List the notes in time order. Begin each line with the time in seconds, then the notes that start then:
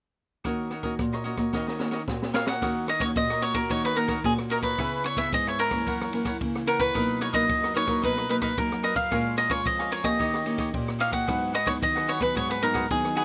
0.44 D#3 A#3 C#4 F#4 A#4 C#5 D#5, kick, cross-stick, closed hi-hat
0.71 F#4 A#4 C#5 D#5, cross-stick, closed hi-hat
0.83 A#3 C#4 F#4 A#4 C#5 D#5, kick, closed hi-hat
0.99 A#2, kick, cross-stick, closed hi-hat
1.13 A#4 C#5 D#5, cross-stick, closed hi-hat
1.24 A#3 C#4 F#4 A#4 C#5 D#5, closed hi-hat
1.37 A#3 C#4 F#4 A#4 C#5 D#5, kick, cross-stick, closed hi-hat
1.53 D#3 F#4 A#4 C#5 D#5, kick, snare
1.67 A#4 C#5 D#5, snare
1.79 A#3 C#4 F#4 A#4 C#5 D#5, snare
1.91 F#4 A#4 C#5 D#5, snare
2.08 A#2 A#3 C#4 F#4, kick, snare
2.22 snare
2.33 F#4 A#4 C#5 D#5 F5, snare
2.45 A#4 C#5 D#5 F#5, snare
2.61 D#3 A#3 C#4 F#4 A#4 C#5 D#5, kick, cross-stick, ride
2.87 F#4 A#4 C#5 D#5, cross-stick, ride
2.99 A#3 C#4 F#4 A#4 C#5 D#5, kick, ride
3.16 A#2 D#5, kick, ride
3.30 A#4 C#5 D#5, cross-stick
3.42 F#4 A#4 C#5 D#5, ride
3.54 A#3 C#4 F#4 A#4 C#5 D#5, kick, cross-stick, ride
3.69 D#3 F#4 A#4 C#5 D#5, kick, ride
3.84 A#4 B4 C#5 D#5, cross-stick
3.96 A#3 C#4 F#4 A#4 C#5 D#5, ride
4.08 F#4 A#4 C#5 D#5, kick, cross-stick, ride
4.24 A#2 A#3 C#4 F#4 G#4, kick, ride
4.39 cross-stick
4.49 F#4 A#4 C#5 D#5, ride
4.62 A#4 B4 C#5 D#5, kick, ride
4.78 C#3 B3 E4 G#4 B4 C#5 E5, kick, cross-stick, ride
5.04 E4 B4 C#5 E5, cross-stick, ride
5.17 B3 E4 G#4 B4 C#5 E5, kick, ride
5.33 G#2 D#5, kick, ride
5.47 B4 C#5 E5, cross-stick
5.58 E4 A#4 B4 C#5 E5, ride
5.71 E3 A#3 C#4 B4 C#5 E5, kick, cross-stick, ride
5.87 F#2 E4 A#4 C#5 F#5, kick, ride
6.01 A#4 C#5 F#5, cross-stick
6.13 E3 A#3 C#4 E4 A#4 C#5 F#5, ride
6.25 E4 A#4 C#5 F#5, kick, cross-stick, ride
6.41 C#3 E3 A#3 C#4, kick, ride
6.56 cross-stick
6.66 E4 A#4 C#5 F#5, ride
6.79 A#4 B4 C#5 F#5, kick, ride
6.94 B2 F#3 A#3 D#4 A#4 B4 D#5, kick, cross-stick, ride
7.20 D#4 A#4 B4 C#5 D#5, cross-stick, ride
7.32 F#3 A#3 D#4 A#4 B4 D#5, kick, ride
7.49 F#2, kick, ride
7.63 A#4 B4 D#5, cross-stick
7.74 F#3 A#3 D#4 A#4 B4 C#5 D#5, ride
7.87 F#3 A#3 D#4 A#4 B4 D#5, kick, cross-stick, ride
8.02 B2 D#4 A#4 B4 D#5, kick, ride
8.17 A#4 B4 D#5, cross-stick
8.29 F#3 A#3 D#4 A#4 B4 D#5, ride
8.42 D#4 A#4 B4 D#5, kick, cross-stick, ride
8.57 F#2 F#3 A#3 D#4 A#4, kick, ride
8.72 cross-stick
8.83 D#4 A#4 B4 D#5, ride
8.96 A#4 D#5 F5, kick, ride
9.11 A#2 G#3 C#4 F4 A#4 C#5 F5 G#5, kick, cross-stick, ride
9.36 A#4 C#5 D#5 F5 G#5, cross-stick, ride
9.49 G#3 C#4 F4 A#4 C#5 F5 G#5, kick, ride
9.65 F2 D#5, kick, ride
9.79 C#5 F5 G#5, cross-stick
9.91 A#4 C#5 F5 G#5, ride
10.04 A#3 C#4 G4 C#5 D#5 F5 G#5, kick, cross-stick, ride
10.19 D#3 D#4 G4 C#5 D#5, kick, ride
10.34 G4 C#5 D#5, cross-stick
10.46 A#3 C#4 D#4 G4 C#5 D#5, ride
10.58 D#4 G4 C#5 D#5, kick, cross-stick, ride
10.74 A#2 A#3 C#4 G4, kick, ride
10.88 cross-stick
10.99 D#4 G4 C#5 D#5 F5, ride
11.11 G4 C#5 D#5 F#5, kick, ride
11.27 G#2 F#3 B3 D#4 F#4 G#4 B4 F#5, kick, cross-stick, ride
11.53 F#4 G#4 B4 D#5 F#5, cross-stick, ride
11.65 F#3 B3 D#4 F#4 G#4 B4 C#5 F#5, kick, ride
11.82 D#3 D#5, kick, ride
11.95 G#4 B4 F#5, cross-stick
12.07 F#4 G#4 B4 C#5 F#5, ride
12.20 F#3 B3 D#4 G#4 B4 F#5, kick, cross-stick, ride
12.35 G#2 F#4 G#4 B4 C#5 F#5, kick, ride
12.50 G#4 B4 F#5, cross-stick
12.61 F#3 B3 D#4 F#4 G#4 A#4 B4 F#5, ride
12.74 F#4 G#4 B4 F#5, kick, cross-stick, ride
12.90 D#3 F#3 B3 D#4 G#4, kick, ride
13.05 cross-stick
13.15 F#4 G#4 B4 F#5, ride